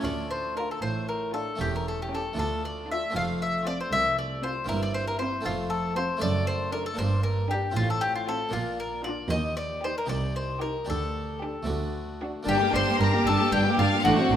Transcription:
0.00 double bass section D2, cello section D2, harpsichord D2 A3 D4 F4
0.04 mandolin D5
0.31 mandolin C5
0.56 viola section D4, violin section F4 A5, mandolin A#4
0.71 mandolin A4
0.82 double bass section A1, cello section A2, harpsichord A2, mandolin C5
1.09 mandolin A#4
1.34 viola section D4, violin section F4 A5, mandolin A4
1.56 harpsichord A3 C#4 G4
1.60 double bass section E1, harpsichord E2, cello section E2, mandolin G4
1.76 mandolin A#4
1.88 mandolin A4
2.02 mandolin G4
2.11 viola section C#4, violin section G4 A5, mandolin A4
2.33 cello section D2, harpsichord A3 D4 F4
2.38 harpsichord D2, double bass section D2, mandolin A4
2.65 mandolin D5
2.88 viola section D4, violin section F4 A5, mandolin E5
3.10 harpsichord A3 C4 F4
3.15 double bass section F1, cello section F2, harpsichord F2, mandolin F5
3.42 mandolin E5
3.66 viola section C4, violin section F4 A5, mandolin D5
3.81 mandolin C5
3.92 harpsichord C2, cello section C2, double bass section C2, mandolin E5
4.18 mandolin D5
4.42 viola section C4, violin section F4 A5, mandolin C5
4.64 harpsichord A#3 C4 E4
4.69 double bass section G1, cello section G2, harpsichord G2, mandolin A#4
4.83 mandolin D5
4.94 mandolin C5
5.08 mandolin A#4
5.19 viola section C4, violin section E4 A#5, mandolin C5
5.41 harpsichord A3 C4 F4
5.45 double bass section F1, harpsichord F2, cello section F2, mandolin F4
5.70 mandolin A4
5.95 viola section C4, violin section F4 A5, mandolin C5
6.17 harpsichord A3 D4 A4
6.21 double bass section F#1, harpsichord F#2, cello section F#2, mandolin D5
6.47 mandolin C5
6.72 viola section D4, violin section A4 A5, mandolin A#4
6.86 mandolin A4
6.94 harpsichord A#3 D4 G4
6.99 double bass section G1, harpsichord G2, cello section G2, mandolin C5
7.23 mandolin A#4
7.50 viola section D4, violin section G4 A#5, mandolin G4
7.71 harpsichord C4 F4
7.76 double bass section A1, cello section A2, harpsichord A2, mandolin F4
7.90 mandolin A4
8.01 mandolin G4
8.15 mandolin F4
8.28 viola section C4, violin section F4 C6, mandolin A4
8.49 harpsichord A#3 D4 F4
8.53 double bass section A#1, cello section A#2, harpsichord A#2, mandolin F4
8.80 mandolin A#4
9.04 viola section D4, violin section F4 A#5, mandolin D5
9.28 cello section D#2, double bass section D#2, harpsichord D#2 D#4 G4, mandolin D#5
9.57 mandolin D5
9.83 viola section D#4, violin section G4 G5, mandolin C5
9.98 mandolin A#4
10.06 harpsichord C2 D#4 G4, double bass section C2, cello section C2, mandolin D5
10.36 mandolin C5
10.61 viola section D#4, violin section G4 G5, mandolin A#4
10.85 harpsichord D2 D4 G4, double bass section D2, cello section D2
10.90 mandolin A4
11.42 viola section D4, violin section G4 G5
11.63 harpsichord A3 D4 F#4
11.67 harpsichord D2, double bass section D2, cello section D2
12.22 viola section D4, violin section F#4 A5
12.43 harpsichord A#3 D4 G4, violin section D4
12.47 double bass section G1, harpsichord G2, cello section G2, viola section G3, mandolin G4, violin section G5
12.60 viola section A#3, violin section G4
12.73 double bass section G1, cello section G2, harpsichord G2, viola section G3, violin section D4 C6, mandolin C5
12.87 viola section A#3, violin section G4
13.00 double bass section G1, cello section G2, harpsichord G2, viola section G3, violin section D4 A#5, mandolin A#4
13.14 viola section A#3, violin section G4
13.25 double bass section G1, cello section G2, harpsichord G2, viola section G3, violin section D4 A5, mandolin A4
13.40 viola section A#3, violin section G4
13.52 double bass section G1, cello section G2, harpsichord G2, viola section G3, violin section D4 G5, mandolin G4
13.65 viola section A#3, violin section G4
13.78 double bass section G1, harpsichord G2, cello section G2, viola section G3, violin section D4 F5, mandolin F4
13.93 viola section A#3, violin section G4
14.00 harpsichord C4 D4
14.04 double bass section A1, harpsichord A2, cello section A2, viola section A3, violin section D4 F#5, mandolin F#4
14.19 viola section C4, violin section F#4
14.30 double bass section A1, cello section A2, harpsichord A2, viola section A3, violin section D4

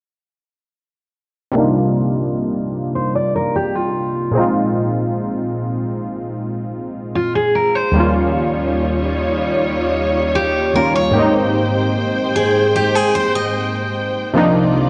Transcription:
1.51 synth keys C3 G3 A#3
1.56 synth keys D4 D#4 F4
2.95 steel-string acoustic guitar C5
3.15 steel-string acoustic guitar D5
3.35 steel-string acoustic guitar A#4
3.55 steel-string acoustic guitar G4
3.75 steel-string acoustic guitar F4
4.32 synth keys A#2 G#3 C4
4.38 synth keys D#4 F4
7.15 steel-string acoustic guitar F4
7.35 steel-string acoustic guitar G#4
7.55 steel-string acoustic guitar A#4
7.75 steel-string acoustic guitar C5
7.92 synth keys D#2 G3 A#3, string section F4
7.96 string section G3 D#4 C#5, synth keys C#4 F4
10.35 steel-string acoustic guitar G4
10.74 synth keys D#2 G3 A#3 C#4, steel-string acoustic guitar A#4
10.78 synth keys F4
10.95 steel-string acoustic guitar C#5
11.11 synth keys G#2 G4
11.15 string section G#3 C5 G5, synth keys A#3 C4
11.19 synth keys D#4
12.35 steel-string acoustic guitar G#4
12.76 steel-string acoustic guitar G4
12.95 steel-string acoustic guitar G#4
13.15 steel-string acoustic guitar C5
13.35 steel-string acoustic guitar D#5
14.34 string section C2 D#3 A#3 F4 D5, synth keys C3 F3 A#3 D4 D#4

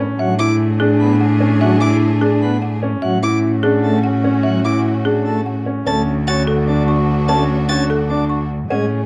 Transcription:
0.00 grand piano C#4
0.19 cello A2, pipe organ F#3, clarinet D4, string section D4 G#4, marimba E5
0.39 grand piano E4, violin D6
0.80 grand piano D4, marimba G#4
1.00 pipe organ B3
1.20 marimba F#5
1.40 grand piano C#4
1.60 pipe organ F#3, marimba E5
1.81 grand piano E4, violin D6
2.21 grand piano D4, marimba G#4
2.41 pipe organ B3
2.62 marimba F#5
2.83 grand piano C#4
3.02 cello A2, pipe organ F#3, clarinet C#4, string section C#4 F#4, marimba E5
3.23 grand piano E4, violin D6
3.63 grand piano D4, marimba G#4
3.83 pipe organ A3
4.04 marimba F#5
4.24 grand piano C#4
4.43 pipe organ F#3, marimba E5
4.64 grand piano E4, violin D6
5.05 grand piano D4, marimba G#4
5.25 pipe organ A3
5.46 marimba F#5
5.66 grand piano C#4
5.86 cello D2, pipe organ A3, grand piano C#4, string section D4 F#4, clarinet F#4, marimba A5, violin A6
6.27 pipe organ C#4, grand piano F#4, violin A6
6.47 marimba A4
6.68 pipe organ D4, grand piano D4
6.88 marimba C#6
7.28 pipe organ A3, grand piano C#4, marimba A5, violin A6
7.69 pipe organ C#4, grand piano F#4, violin A6
7.90 marimba A4
8.09 pipe organ D4, grand piano D4
8.29 marimba C#6
8.70 cello A2, pipe organ G#3, grand piano C#4, string section C#4 G#4, clarinet G#4, marimba F#5

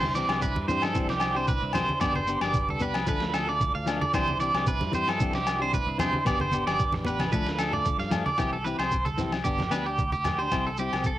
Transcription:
Already playing: fingered electric bass C2, tonewheel organ D4 E4 C5, clean electric guitar C5
0.03 high conga
0.14 clean electric guitar E3 C4 D4 G4 D5, shekere
0.28 fingered electric bass C2, clean electric guitar C4 D4 G4, snare, low agogo
0.42 clean electric guitar B4, kick, shekere
0.55 fingered electric bass G2, high conga
0.68 clean electric guitar E3 C4 D4 G4 C5, low conga, shekere
0.82 clean electric guitar A4, snare, low agogo
0.94 clean electric guitar E3 C4 D4 G4, kick, shekere
1.09 fingered electric bass C2, clean electric guitar G4, snare
1.20 snare, low agogo, shekere
1.35 clean electric guitar C4 D4 G4 C5
1.47 clean electric guitar B4, kick, shekere
1.62 fingered electric bass C2
1.73 clean electric guitar E3 C4 D4 C5, snare, low conga, low agogo, shekere
1.77 clean electric guitar G4
1.89 high conga
2.01 fingered electric bass G1, clean electric guitar B3 D4 G4 D5, tonewheel organ G4 B4, kick, snare, low agogo, shekere
2.15 clean electric guitar C5, high conga
2.27 clean electric guitar B3 D4 G4, shekere
2.41 fingered electric bass G1, clean electric guitar D4 G4 D5, snare, low agogo
2.53 kick, shekere
2.69 fingered electric bass C2, clean electric guitar A4, high conga
2.80 clean electric guitar B3 D4 B4, low conga, shekere
2.84 clean electric guitar G4
2.94 snare, low agogo
3.06 fingered electric bass D2, clean electric guitar F3 A3 D4 A4 B4, tonewheel organ D4 F4 A4, kick, shekere
3.20 fingered electric bass D2, snare
3.34 clean electric guitar A4, snare, low agogo, shekere
3.48 clean electric guitar A3 D4 A4 D5
3.61 kick, shekere
3.75 fingered electric bass D2, clean electric guitar F5
3.86 clean electric guitar F3 A3 D4 A4, snare, low agogo, shekere
4.01 clean electric guitar D5, high conga
4.13 fingered electric bass C2, clean electric guitar E3 C4 D4 G4 C5, tonewheel organ E4 C5, kick, snare, low agogo, shekere
4.28 high conga
4.39 clean electric guitar E3 C4 D4 G4 D5, shekere
4.54 fingered electric bass C2, clean electric guitar C4 D4 G4, snare, low agogo
4.67 clean electric guitar B4, kick, shekere
4.80 fingered electric bass G2, snare, high conga
4.92 clean electric guitar E3 C4 G4 C5, muted clean electric guitar stroke, low conga, shekere
5.08 clean electric guitar A4, snare, low agogo
5.19 clean electric guitar E3 C4 D4 G4, kick, shekere
5.33 fingered electric bass C2, clean electric guitar G4, snare
5.47 snare, low agogo, shekere
5.60 clean electric guitar C4 D4 G4 C5
5.73 clean electric guitar B4, kick, shekere
5.86 fingered electric bass C2
5.98 clean electric guitar E3 C4 D4 G4 C5, snare, low conga, low agogo, shekere
6.13 high conga
6.25 fingered electric bass G1, clean electric guitar B3 G4 D5, tonewheel organ G4 B4, muted clean electric guitar stroke, kick, snare, low agogo, shekere
6.40 clean electric guitar C5, high conga
6.51 clean electric guitar B3 D4 G4, high conga, shekere
6.67 fingered electric bass G1, clean electric guitar D4 G4 D5, snare, low agogo
6.79 kick, shekere
6.92 fingered electric bass A1, muted clean electric guitar stroke, snare, high conga
7.05 clean electric guitar B3 D4 B4, low conga, shekere
7.09 clean electric guitar G4
7.19 snare, high conga, low agogo
7.30 fingered electric bass D2, clean electric guitar F3 A3 B4, tonewheel organ F4 A4, kick, shekere
7.34 clean electric guitar D4 A4
7.45 fingered electric bass D2, snare
7.59 clean electric guitar A4, snare, low agogo, shekere
7.71 clean electric guitar A3 D4 A4 D5, low conga
7.85 kick, shekere
7.98 fingered electric bass G2, clean electric guitar F5, snare
8.11 clean electric guitar F3 A3 D4 A4, snare, low conga, low agogo, shekere
8.26 clean electric guitar D5, high conga
8.38 fingered electric bass C2, clean electric guitar E3 C4 E4 G4, kick, snare, low agogo, shekere
8.53 clean electric guitar A4
8.64 clean electric guitar E3 C4 E4 G4 B4, shekere
8.79 fingered electric bass C2, clean electric guitar C4 G4 C5, muted clean electric guitar stroke, snare, low agogo
8.91 kick, shekere
9.05 clean electric guitar A4, high conga, shekere
9.18 clean electric guitar E3 C4 E4 G4, snare, low conga, shekere
9.32 snare, low agogo
9.44 fingered electric bass G1, clean electric guitar B3 D4 G4, kick, shekere
9.59 snare, high conga
9.70 fingered electric bass D2, clean electric guitar B3 D4 G4 B4, snare, low agogo, shekere
9.86 clean electric guitar D4 G4
9.98 kick, shekere
10.12 clean electric guitar G4, high conga, shekere
10.24 snare, high conga, low conga, low agogo, shekere
10.38 clean electric guitar D4 G4 C5
10.51 fingered electric bass C2, clean electric guitar G3 C4 E4 G4, kick, snare, low agogo, shekere
10.67 clean electric guitar A4
10.77 clean electric guitar G3 C4 E4 G4, shekere
10.81 clean electric guitar G4
10.93 fingered electric bass C2, clean electric guitar C4 G4, snare, low agogo
11.04 clean electric guitar A4, kick, shekere

